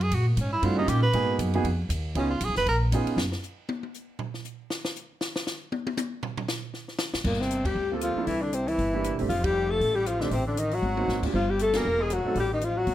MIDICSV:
0, 0, Header, 1, 7, 480
1, 0, Start_track
1, 0, Tempo, 255102
1, 222, Time_signature, 4, 2, 24, 8
1, 24357, End_track
2, 0, Start_track
2, 0, Title_t, "Alto saxophone"
2, 0, Program_c, 0, 65
2, 13671, Note_on_c, 0, 58, 75
2, 13949, Note_on_c, 0, 60, 78
2, 13977, Note_off_c, 0, 58, 0
2, 14416, Note_on_c, 0, 67, 79
2, 14444, Note_off_c, 0, 60, 0
2, 14889, Note_off_c, 0, 67, 0
2, 15116, Note_on_c, 0, 65, 79
2, 15550, Note_off_c, 0, 65, 0
2, 15563, Note_on_c, 0, 64, 84
2, 15842, Note_on_c, 0, 62, 78
2, 15870, Note_off_c, 0, 64, 0
2, 16072, Note_on_c, 0, 60, 80
2, 16100, Note_off_c, 0, 62, 0
2, 16337, Note_on_c, 0, 64, 83
2, 16365, Note_off_c, 0, 60, 0
2, 17294, Note_off_c, 0, 64, 0
2, 17481, Note_on_c, 0, 65, 91
2, 17777, Note_on_c, 0, 67, 94
2, 17805, Note_off_c, 0, 65, 0
2, 18267, Note_on_c, 0, 69, 85
2, 18295, Note_off_c, 0, 67, 0
2, 18735, Note_on_c, 0, 67, 89
2, 18763, Note_off_c, 0, 69, 0
2, 18950, Note_on_c, 0, 65, 88
2, 18978, Note_off_c, 0, 67, 0
2, 19224, Note_on_c, 0, 62, 74
2, 19252, Note_off_c, 0, 65, 0
2, 19423, Note_off_c, 0, 62, 0
2, 19450, Note_on_c, 0, 60, 84
2, 19691, Note_off_c, 0, 60, 0
2, 19707, Note_on_c, 0, 62, 80
2, 19940, Note_on_c, 0, 63, 82
2, 19968, Note_off_c, 0, 62, 0
2, 20225, Note_on_c, 0, 66, 89
2, 20253, Note_off_c, 0, 63, 0
2, 21161, Note_off_c, 0, 66, 0
2, 21367, Note_on_c, 0, 65, 95
2, 21648, Note_on_c, 0, 67, 81
2, 21676, Note_off_c, 0, 65, 0
2, 21837, Note_off_c, 0, 67, 0
2, 21880, Note_on_c, 0, 69, 96
2, 22165, Note_on_c, 0, 70, 99
2, 22193, Note_off_c, 0, 69, 0
2, 22631, Note_on_c, 0, 68, 88
2, 22659, Note_off_c, 0, 70, 0
2, 22838, Note_on_c, 0, 66, 89
2, 22867, Note_off_c, 0, 68, 0
2, 23291, Note_off_c, 0, 66, 0
2, 23329, Note_on_c, 0, 67, 95
2, 23554, Note_off_c, 0, 67, 0
2, 23591, Note_on_c, 0, 63, 84
2, 23792, Note_on_c, 0, 65, 86
2, 23820, Note_off_c, 0, 63, 0
2, 24053, Note_on_c, 0, 66, 94
2, 24081, Note_off_c, 0, 65, 0
2, 24357, Note_off_c, 0, 66, 0
2, 24357, End_track
3, 0, Start_track
3, 0, Title_t, "Grand piano"
3, 0, Program_c, 1, 0
3, 1165, Note_on_c, 1, 57, 66
3, 1172, Note_on_c, 1, 60, 63
3, 1184, Note_on_c, 1, 62, 60
3, 1193, Note_on_c, 1, 64, 65
3, 1196, Note_on_c, 1, 66, 76
3, 1420, Note_off_c, 1, 57, 0
3, 1424, Note_off_c, 1, 60, 0
3, 1429, Note_off_c, 1, 62, 0
3, 1434, Note_off_c, 1, 64, 0
3, 1435, Note_off_c, 1, 66, 0
3, 1437, Note_on_c, 1, 58, 72
3, 1440, Note_on_c, 1, 61, 62
3, 1452, Note_on_c, 1, 63, 63
3, 1453, Note_on_c, 1, 65, 65
3, 1463, Note_on_c, 1, 67, 75
3, 1870, Note_off_c, 1, 58, 0
3, 1872, Note_off_c, 1, 61, 0
3, 1878, Note_off_c, 1, 63, 0
3, 1878, Note_off_c, 1, 65, 0
3, 1883, Note_off_c, 1, 67, 0
3, 2129, Note_on_c, 1, 58, 66
3, 2134, Note_on_c, 1, 59, 61
3, 2140, Note_on_c, 1, 63, 61
3, 2147, Note_on_c, 1, 66, 57
3, 2160, Note_on_c, 1, 68, 77
3, 2833, Note_off_c, 1, 58, 0
3, 2836, Note_off_c, 1, 59, 0
3, 2839, Note_off_c, 1, 63, 0
3, 2842, Note_off_c, 1, 66, 0
3, 2849, Note_off_c, 1, 68, 0
3, 2901, Note_on_c, 1, 59, 69
3, 2902, Note_on_c, 1, 58, 70
3, 2918, Note_on_c, 1, 63, 67
3, 2925, Note_on_c, 1, 68, 84
3, 2929, Note_on_c, 1, 66, 68
3, 3081, Note_off_c, 1, 58, 0
3, 3081, Note_off_c, 1, 59, 0
3, 3089, Note_off_c, 1, 63, 0
3, 3093, Note_off_c, 1, 68, 0
3, 3095, Note_off_c, 1, 66, 0
3, 4047, Note_on_c, 1, 59, 61
3, 4052, Note_on_c, 1, 61, 56
3, 4064, Note_on_c, 1, 63, 56
3, 4076, Note_on_c, 1, 68, 68
3, 4077, Note_on_c, 1, 65, 61
3, 4299, Note_off_c, 1, 59, 0
3, 4302, Note_off_c, 1, 61, 0
3, 4308, Note_off_c, 1, 63, 0
3, 4313, Note_off_c, 1, 68, 0
3, 4314, Note_off_c, 1, 65, 0
3, 5512, Note_on_c, 1, 59, 66
3, 5516, Note_on_c, 1, 61, 57
3, 5520, Note_on_c, 1, 63, 57
3, 5526, Note_on_c, 1, 65, 57
3, 5543, Note_on_c, 1, 68, 72
3, 5982, Note_off_c, 1, 59, 0
3, 5984, Note_off_c, 1, 61, 0
3, 5986, Note_off_c, 1, 63, 0
3, 5989, Note_off_c, 1, 65, 0
3, 5998, Note_off_c, 1, 68, 0
3, 14890, Note_on_c, 1, 58, 57
3, 14895, Note_on_c, 1, 60, 55
3, 14910, Note_on_c, 1, 65, 53
3, 14925, Note_on_c, 1, 69, 66
3, 15334, Note_off_c, 1, 58, 0
3, 15342, Note_off_c, 1, 60, 0
3, 15349, Note_off_c, 1, 65, 0
3, 15357, Note_off_c, 1, 69, 0
3, 15363, Note_on_c, 1, 58, 60
3, 15378, Note_on_c, 1, 62, 51
3, 15385, Note_on_c, 1, 64, 55
3, 15391, Note_on_c, 1, 69, 67
3, 15547, Note_off_c, 1, 58, 0
3, 15555, Note_off_c, 1, 62, 0
3, 15559, Note_off_c, 1, 64, 0
3, 15562, Note_off_c, 1, 69, 0
3, 16811, Note_on_c, 1, 58, 60
3, 16825, Note_on_c, 1, 62, 55
3, 16832, Note_on_c, 1, 64, 59
3, 16841, Note_on_c, 1, 67, 66
3, 17263, Note_off_c, 1, 58, 0
3, 17269, Note_off_c, 1, 62, 0
3, 17273, Note_off_c, 1, 64, 0
3, 17275, Note_on_c, 1, 57, 63
3, 17277, Note_off_c, 1, 67, 0
3, 17286, Note_on_c, 1, 60, 60
3, 17300, Note_on_c, 1, 62, 55
3, 17309, Note_on_c, 1, 67, 68
3, 17466, Note_off_c, 1, 57, 0
3, 17471, Note_off_c, 1, 60, 0
3, 17478, Note_off_c, 1, 62, 0
3, 17483, Note_off_c, 1, 67, 0
3, 19192, Note_on_c, 1, 57, 58
3, 19203, Note_on_c, 1, 60, 58
3, 19222, Note_on_c, 1, 63, 57
3, 19229, Note_on_c, 1, 67, 65
3, 19386, Note_off_c, 1, 57, 0
3, 19392, Note_off_c, 1, 60, 0
3, 19402, Note_off_c, 1, 63, 0
3, 19405, Note_off_c, 1, 67, 0
3, 20631, Note_on_c, 1, 58, 62
3, 20645, Note_on_c, 1, 60, 61
3, 20652, Note_on_c, 1, 63, 56
3, 20663, Note_on_c, 1, 66, 74
3, 21096, Note_off_c, 1, 58, 0
3, 21103, Note_off_c, 1, 60, 0
3, 21106, Note_off_c, 1, 63, 0
3, 21112, Note_off_c, 1, 66, 0
3, 21139, Note_on_c, 1, 58, 61
3, 21140, Note_on_c, 1, 62, 58
3, 21154, Note_on_c, 1, 65, 51
3, 21173, Note_on_c, 1, 67, 67
3, 21322, Note_off_c, 1, 58, 0
3, 21322, Note_off_c, 1, 62, 0
3, 21329, Note_off_c, 1, 65, 0
3, 21338, Note_off_c, 1, 67, 0
3, 22098, Note_on_c, 1, 59, 58
3, 22108, Note_on_c, 1, 62, 53
3, 22115, Note_on_c, 1, 66, 53
3, 22122, Note_on_c, 1, 68, 66
3, 22282, Note_off_c, 1, 59, 0
3, 22287, Note_off_c, 1, 62, 0
3, 22290, Note_off_c, 1, 66, 0
3, 22293, Note_off_c, 1, 68, 0
3, 23044, Note_on_c, 1, 57, 57
3, 23051, Note_on_c, 1, 60, 56
3, 23065, Note_on_c, 1, 63, 52
3, 23077, Note_on_c, 1, 69, 68
3, 23235, Note_off_c, 1, 57, 0
3, 23239, Note_off_c, 1, 60, 0
3, 23246, Note_off_c, 1, 63, 0
3, 23252, Note_off_c, 1, 69, 0
3, 24357, End_track
4, 0, Start_track
4, 0, Title_t, "Tenor saxophone"
4, 0, Program_c, 2, 66
4, 49, Note_on_c, 2, 68, 101
4, 269, Note_on_c, 2, 66, 84
4, 297, Note_off_c, 2, 68, 0
4, 520, Note_off_c, 2, 66, 0
4, 542, Note_on_c, 2, 58, 45
4, 763, Note_on_c, 2, 61, 73
4, 791, Note_off_c, 2, 58, 0
4, 977, Note_off_c, 2, 61, 0
4, 989, Note_on_c, 2, 64, 89
4, 1203, Note_on_c, 2, 65, 90
4, 1232, Note_off_c, 2, 64, 0
4, 1467, Note_off_c, 2, 65, 0
4, 1474, Note_on_c, 2, 63, 91
4, 1672, Note_on_c, 2, 67, 82
4, 1700, Note_off_c, 2, 63, 0
4, 1912, Note_off_c, 2, 67, 0
4, 1924, Note_on_c, 2, 71, 97
4, 2564, Note_off_c, 2, 71, 0
4, 4106, Note_on_c, 2, 61, 73
4, 4320, Note_off_c, 2, 61, 0
4, 4332, Note_on_c, 2, 65, 89
4, 4594, Note_on_c, 2, 68, 98
4, 4622, Note_off_c, 2, 65, 0
4, 4828, Note_off_c, 2, 68, 0
4, 4839, Note_on_c, 2, 71, 106
4, 5016, Note_off_c, 2, 71, 0
4, 5053, Note_on_c, 2, 70, 88
4, 5207, Note_off_c, 2, 70, 0
4, 13628, Note_on_c, 2, 46, 59
4, 13906, Note_on_c, 2, 48, 62
4, 13934, Note_off_c, 2, 46, 0
4, 14403, Note_on_c, 2, 55, 71
4, 14431, Note_off_c, 2, 48, 0
4, 14883, Note_off_c, 2, 55, 0
4, 15097, Note_on_c, 2, 53, 60
4, 15540, Note_off_c, 2, 53, 0
4, 15583, Note_on_c, 2, 52, 68
4, 15869, Note_on_c, 2, 50, 58
4, 15897, Note_off_c, 2, 52, 0
4, 16066, Note_on_c, 2, 48, 72
4, 16094, Note_off_c, 2, 50, 0
4, 16326, Note_on_c, 2, 52, 74
4, 16354, Note_off_c, 2, 48, 0
4, 17288, Note_off_c, 2, 52, 0
4, 17503, Note_on_c, 2, 53, 70
4, 17750, Note_on_c, 2, 55, 79
4, 17778, Note_off_c, 2, 53, 0
4, 18228, Note_on_c, 2, 57, 72
4, 18257, Note_off_c, 2, 55, 0
4, 18703, Note_on_c, 2, 55, 76
4, 18731, Note_off_c, 2, 57, 0
4, 18940, Note_on_c, 2, 53, 67
4, 18968, Note_off_c, 2, 55, 0
4, 19196, Note_on_c, 2, 50, 67
4, 19224, Note_off_c, 2, 53, 0
4, 19386, Note_off_c, 2, 50, 0
4, 19397, Note_on_c, 2, 48, 72
4, 19663, Note_off_c, 2, 48, 0
4, 19672, Note_on_c, 2, 50, 66
4, 19890, Note_on_c, 2, 51, 76
4, 19919, Note_off_c, 2, 50, 0
4, 20198, Note_on_c, 2, 54, 77
4, 20226, Note_off_c, 2, 51, 0
4, 21147, Note_off_c, 2, 54, 0
4, 21329, Note_on_c, 2, 53, 75
4, 21621, Note_on_c, 2, 55, 68
4, 21649, Note_off_c, 2, 53, 0
4, 21823, Note_off_c, 2, 55, 0
4, 21837, Note_on_c, 2, 57, 80
4, 22108, Note_on_c, 2, 58, 85
4, 22136, Note_off_c, 2, 57, 0
4, 22590, Note_on_c, 2, 56, 78
4, 22618, Note_off_c, 2, 58, 0
4, 22794, Note_on_c, 2, 54, 69
4, 22822, Note_off_c, 2, 56, 0
4, 23255, Note_off_c, 2, 54, 0
4, 23266, Note_on_c, 2, 55, 79
4, 23521, Note_off_c, 2, 55, 0
4, 23566, Note_on_c, 2, 51, 68
4, 23772, Note_on_c, 2, 53, 78
4, 23800, Note_off_c, 2, 51, 0
4, 24016, Note_on_c, 2, 54, 76
4, 24045, Note_off_c, 2, 53, 0
4, 24357, Note_off_c, 2, 54, 0
4, 24357, End_track
5, 0, Start_track
5, 0, Title_t, "Upright bass"
5, 0, Program_c, 3, 32
5, 0, Note_on_c, 3, 42, 90
5, 197, Note_off_c, 3, 42, 0
5, 209, Note_on_c, 3, 46, 80
5, 680, Note_off_c, 3, 46, 0
5, 693, Note_on_c, 3, 44, 83
5, 1162, Note_off_c, 3, 44, 0
5, 1172, Note_on_c, 3, 43, 82
5, 1633, Note_off_c, 3, 43, 0
5, 1645, Note_on_c, 3, 46, 88
5, 2117, Note_off_c, 3, 46, 0
5, 2130, Note_on_c, 3, 44, 84
5, 2599, Note_off_c, 3, 44, 0
5, 2611, Note_on_c, 3, 42, 82
5, 3069, Note_off_c, 3, 42, 0
5, 3080, Note_on_c, 3, 41, 86
5, 3545, Note_off_c, 3, 41, 0
5, 3556, Note_on_c, 3, 39, 90
5, 4031, Note_off_c, 3, 39, 0
5, 4046, Note_on_c, 3, 37, 81
5, 4516, Note_off_c, 3, 37, 0
5, 4526, Note_on_c, 3, 35, 85
5, 4684, Note_on_c, 3, 32, 53
5, 4712, Note_off_c, 3, 35, 0
5, 4823, Note_off_c, 3, 32, 0
5, 4834, Note_on_c, 3, 29, 65
5, 4992, Note_off_c, 3, 29, 0
5, 5004, Note_on_c, 3, 34, 85
5, 5474, Note_off_c, 3, 34, 0
5, 5491, Note_on_c, 3, 32, 84
5, 5726, Note_off_c, 3, 32, 0
5, 5952, Note_on_c, 3, 30, 82
5, 6229, Note_off_c, 3, 30, 0
5, 13624, Note_on_c, 3, 31, 83
5, 14547, Note_off_c, 3, 31, 0
5, 14583, Note_on_c, 3, 38, 79
5, 15297, Note_off_c, 3, 38, 0
5, 15553, Note_on_c, 3, 36, 78
5, 16475, Note_off_c, 3, 36, 0
5, 16520, Note_on_c, 3, 31, 81
5, 17121, Note_off_c, 3, 31, 0
5, 17158, Note_on_c, 3, 34, 53
5, 17309, Note_off_c, 3, 34, 0
5, 17321, Note_on_c, 3, 31, 69
5, 17469, Note_off_c, 3, 31, 0
5, 17481, Note_on_c, 3, 29, 73
5, 18401, Note_off_c, 3, 29, 0
5, 18445, Note_on_c, 3, 33, 81
5, 19363, Note_off_c, 3, 33, 0
5, 19394, Note_on_c, 3, 33, 78
5, 20318, Note_off_c, 3, 33, 0
5, 20356, Note_on_c, 3, 32, 83
5, 20814, Note_off_c, 3, 32, 0
5, 20845, Note_on_c, 3, 32, 66
5, 21299, Note_off_c, 3, 32, 0
5, 21326, Note_on_c, 3, 31, 81
5, 22246, Note_off_c, 3, 31, 0
5, 22293, Note_on_c, 3, 28, 82
5, 23000, Note_off_c, 3, 28, 0
5, 23241, Note_on_c, 3, 33, 80
5, 24164, Note_off_c, 3, 33, 0
5, 24205, Note_on_c, 3, 38, 80
5, 24357, Note_off_c, 3, 38, 0
5, 24357, End_track
6, 0, Start_track
6, 0, Title_t, "Muted upright bass strokes"
6, 5737, Note_on_c, 9, 29, 38
6, 5925, Note_off_c, 9, 29, 0
6, 13422, Note_on_c, 9, 29, 44
6, 13610, Note_off_c, 9, 29, 0
6, 15345, Note_on_c, 9, 29, 35
6, 15533, Note_off_c, 9, 29, 0
6, 23046, Note_on_c, 9, 29, 35
6, 23234, Note_off_c, 9, 29, 0
6, 24357, End_track
7, 0, Start_track
7, 0, Title_t, "Drums"
7, 16, Note_on_c, 9, 51, 47
7, 204, Note_off_c, 9, 51, 0
7, 215, Note_on_c, 9, 36, 21
7, 216, Note_on_c, 9, 51, 71
7, 403, Note_off_c, 9, 36, 0
7, 405, Note_off_c, 9, 51, 0
7, 695, Note_on_c, 9, 36, 20
7, 695, Note_on_c, 9, 44, 48
7, 695, Note_on_c, 9, 51, 63
7, 883, Note_off_c, 9, 36, 0
7, 884, Note_off_c, 9, 44, 0
7, 884, Note_off_c, 9, 51, 0
7, 1175, Note_on_c, 9, 36, 18
7, 1179, Note_on_c, 9, 51, 59
7, 1363, Note_off_c, 9, 36, 0
7, 1368, Note_off_c, 9, 51, 0
7, 1654, Note_on_c, 9, 36, 23
7, 1656, Note_on_c, 9, 44, 69
7, 1656, Note_on_c, 9, 51, 67
7, 1842, Note_off_c, 9, 36, 0
7, 1844, Note_off_c, 9, 44, 0
7, 1844, Note_off_c, 9, 51, 0
7, 2132, Note_on_c, 9, 36, 25
7, 2133, Note_on_c, 9, 51, 64
7, 2320, Note_off_c, 9, 36, 0
7, 2321, Note_off_c, 9, 51, 0
7, 2611, Note_on_c, 9, 36, 24
7, 2617, Note_on_c, 9, 44, 59
7, 2617, Note_on_c, 9, 51, 68
7, 2799, Note_off_c, 9, 36, 0
7, 2805, Note_off_c, 9, 44, 0
7, 2805, Note_off_c, 9, 51, 0
7, 2889, Note_on_c, 9, 51, 42
7, 3078, Note_off_c, 9, 51, 0
7, 3091, Note_on_c, 9, 36, 22
7, 3099, Note_on_c, 9, 51, 58
7, 3279, Note_off_c, 9, 36, 0
7, 3287, Note_off_c, 9, 51, 0
7, 3569, Note_on_c, 9, 36, 22
7, 3573, Note_on_c, 9, 44, 65
7, 3573, Note_on_c, 9, 51, 73
7, 3757, Note_off_c, 9, 36, 0
7, 3761, Note_off_c, 9, 44, 0
7, 3761, Note_off_c, 9, 51, 0
7, 4048, Note_on_c, 9, 36, 18
7, 4050, Note_on_c, 9, 51, 60
7, 4236, Note_off_c, 9, 36, 0
7, 4238, Note_off_c, 9, 51, 0
7, 4527, Note_on_c, 9, 44, 50
7, 4527, Note_on_c, 9, 51, 77
7, 4530, Note_on_c, 9, 36, 20
7, 4715, Note_off_c, 9, 44, 0
7, 4715, Note_off_c, 9, 51, 0
7, 4718, Note_off_c, 9, 36, 0
7, 4806, Note_on_c, 9, 38, 44
7, 4994, Note_off_c, 9, 38, 0
7, 5011, Note_on_c, 9, 36, 19
7, 5015, Note_on_c, 9, 51, 56
7, 5199, Note_off_c, 9, 36, 0
7, 5203, Note_off_c, 9, 51, 0
7, 5493, Note_on_c, 9, 36, 24
7, 5498, Note_on_c, 9, 44, 54
7, 5498, Note_on_c, 9, 51, 70
7, 5681, Note_off_c, 9, 36, 0
7, 5686, Note_off_c, 9, 44, 0
7, 5686, Note_off_c, 9, 51, 0
7, 5776, Note_on_c, 9, 51, 47
7, 5964, Note_off_c, 9, 51, 0
7, 5983, Note_on_c, 9, 38, 90
7, 6171, Note_off_c, 9, 38, 0
7, 6252, Note_on_c, 9, 38, 55
7, 6440, Note_off_c, 9, 38, 0
7, 6454, Note_on_c, 9, 44, 57
7, 6642, Note_off_c, 9, 44, 0
7, 6938, Note_on_c, 9, 48, 91
7, 7127, Note_off_c, 9, 48, 0
7, 7208, Note_on_c, 9, 48, 46
7, 7397, Note_off_c, 9, 48, 0
7, 7417, Note_on_c, 9, 44, 55
7, 7605, Note_off_c, 9, 44, 0
7, 7882, Note_on_c, 9, 43, 93
7, 8070, Note_off_c, 9, 43, 0
7, 8169, Note_on_c, 9, 38, 43
7, 8357, Note_off_c, 9, 38, 0
7, 8365, Note_on_c, 9, 44, 56
7, 8553, Note_off_c, 9, 44, 0
7, 8851, Note_on_c, 9, 38, 95
7, 9039, Note_off_c, 9, 38, 0
7, 9120, Note_on_c, 9, 38, 96
7, 9308, Note_off_c, 9, 38, 0
7, 9329, Note_on_c, 9, 44, 54
7, 9517, Note_off_c, 9, 44, 0
7, 9802, Note_on_c, 9, 38, 102
7, 9990, Note_off_c, 9, 38, 0
7, 10081, Note_on_c, 9, 38, 98
7, 10269, Note_off_c, 9, 38, 0
7, 10290, Note_on_c, 9, 38, 92
7, 10290, Note_on_c, 9, 44, 57
7, 10478, Note_off_c, 9, 38, 0
7, 10478, Note_off_c, 9, 44, 0
7, 10765, Note_on_c, 9, 48, 94
7, 10954, Note_off_c, 9, 48, 0
7, 11040, Note_on_c, 9, 48, 95
7, 11228, Note_off_c, 9, 48, 0
7, 11242, Note_on_c, 9, 44, 59
7, 11242, Note_on_c, 9, 48, 104
7, 11430, Note_off_c, 9, 44, 0
7, 11430, Note_off_c, 9, 48, 0
7, 11718, Note_on_c, 9, 43, 99
7, 11906, Note_off_c, 9, 43, 0
7, 11995, Note_on_c, 9, 43, 108
7, 12183, Note_off_c, 9, 43, 0
7, 12201, Note_on_c, 9, 38, 90
7, 12201, Note_on_c, 9, 44, 55
7, 12389, Note_off_c, 9, 38, 0
7, 12389, Note_off_c, 9, 44, 0
7, 12676, Note_on_c, 9, 38, 41
7, 12864, Note_off_c, 9, 38, 0
7, 12951, Note_on_c, 9, 38, 38
7, 13139, Note_off_c, 9, 38, 0
7, 13144, Note_on_c, 9, 38, 105
7, 13144, Note_on_c, 9, 44, 61
7, 13332, Note_off_c, 9, 38, 0
7, 13332, Note_off_c, 9, 44, 0
7, 13428, Note_on_c, 9, 38, 102
7, 13616, Note_off_c, 9, 38, 0
7, 13631, Note_on_c, 9, 49, 67
7, 13633, Note_on_c, 9, 36, 60
7, 13803, Note_on_c, 9, 38, 26
7, 13819, Note_off_c, 9, 49, 0
7, 13821, Note_off_c, 9, 36, 0
7, 13956, Note_off_c, 9, 38, 0
7, 13956, Note_on_c, 9, 38, 41
7, 14124, Note_on_c, 9, 42, 48
7, 14144, Note_off_c, 9, 38, 0
7, 14312, Note_off_c, 9, 42, 0
7, 14393, Note_on_c, 9, 36, 73
7, 14400, Note_on_c, 9, 51, 68
7, 14581, Note_off_c, 9, 36, 0
7, 14588, Note_off_c, 9, 51, 0
7, 15077, Note_on_c, 9, 37, 59
7, 15077, Note_on_c, 9, 42, 50
7, 15265, Note_off_c, 9, 37, 0
7, 15265, Note_off_c, 9, 42, 0
7, 15559, Note_on_c, 9, 46, 40
7, 15561, Note_on_c, 9, 36, 29
7, 15747, Note_off_c, 9, 46, 0
7, 15749, Note_off_c, 9, 36, 0
7, 16045, Note_on_c, 9, 42, 48
7, 16233, Note_off_c, 9, 42, 0
7, 16329, Note_on_c, 9, 46, 35
7, 16517, Note_off_c, 9, 46, 0
7, 16525, Note_on_c, 9, 36, 30
7, 16532, Note_on_c, 9, 46, 38
7, 16714, Note_off_c, 9, 36, 0
7, 16720, Note_off_c, 9, 46, 0
7, 17015, Note_on_c, 9, 37, 58
7, 17015, Note_on_c, 9, 42, 50
7, 17203, Note_off_c, 9, 37, 0
7, 17203, Note_off_c, 9, 42, 0
7, 17289, Note_on_c, 9, 46, 33
7, 17477, Note_off_c, 9, 46, 0
7, 17487, Note_on_c, 9, 36, 30
7, 17497, Note_on_c, 9, 46, 42
7, 17675, Note_off_c, 9, 36, 0
7, 17685, Note_off_c, 9, 46, 0
7, 17762, Note_on_c, 9, 36, 80
7, 17764, Note_on_c, 9, 51, 70
7, 17950, Note_off_c, 9, 36, 0
7, 17952, Note_off_c, 9, 51, 0
7, 18448, Note_on_c, 9, 36, 30
7, 18462, Note_on_c, 9, 46, 38
7, 18636, Note_off_c, 9, 36, 0
7, 18650, Note_off_c, 9, 46, 0
7, 18934, Note_on_c, 9, 37, 58
7, 18934, Note_on_c, 9, 42, 49
7, 19122, Note_off_c, 9, 37, 0
7, 19122, Note_off_c, 9, 42, 0
7, 19205, Note_on_c, 9, 38, 54
7, 19393, Note_off_c, 9, 38, 0
7, 19404, Note_on_c, 9, 36, 30
7, 19404, Note_on_c, 9, 46, 43
7, 19592, Note_off_c, 9, 36, 0
7, 19592, Note_off_c, 9, 46, 0
7, 19891, Note_on_c, 9, 42, 51
7, 20079, Note_off_c, 9, 42, 0
7, 20159, Note_on_c, 9, 46, 33
7, 20347, Note_off_c, 9, 46, 0
7, 20369, Note_on_c, 9, 48, 38
7, 20557, Note_off_c, 9, 48, 0
7, 20643, Note_on_c, 9, 48, 58
7, 20831, Note_off_c, 9, 48, 0
7, 20861, Note_on_c, 9, 38, 50
7, 21049, Note_off_c, 9, 38, 0
7, 21129, Note_on_c, 9, 36, 64
7, 21135, Note_on_c, 9, 49, 70
7, 21317, Note_off_c, 9, 36, 0
7, 21323, Note_off_c, 9, 49, 0
7, 21335, Note_on_c, 9, 36, 32
7, 21523, Note_off_c, 9, 36, 0
7, 21813, Note_on_c, 9, 42, 49
7, 22001, Note_off_c, 9, 42, 0
7, 22081, Note_on_c, 9, 38, 73
7, 22081, Note_on_c, 9, 51, 65
7, 22269, Note_off_c, 9, 38, 0
7, 22269, Note_off_c, 9, 51, 0
7, 22768, Note_on_c, 9, 37, 57
7, 22768, Note_on_c, 9, 42, 50
7, 22956, Note_off_c, 9, 37, 0
7, 22956, Note_off_c, 9, 42, 0
7, 23246, Note_on_c, 9, 46, 43
7, 23251, Note_on_c, 9, 36, 28
7, 23434, Note_off_c, 9, 46, 0
7, 23439, Note_off_c, 9, 36, 0
7, 23735, Note_on_c, 9, 42, 49
7, 23923, Note_off_c, 9, 42, 0
7, 24211, Note_on_c, 9, 36, 29
7, 24211, Note_on_c, 9, 46, 40
7, 24357, Note_off_c, 9, 36, 0
7, 24357, Note_off_c, 9, 46, 0
7, 24357, End_track
0, 0, End_of_file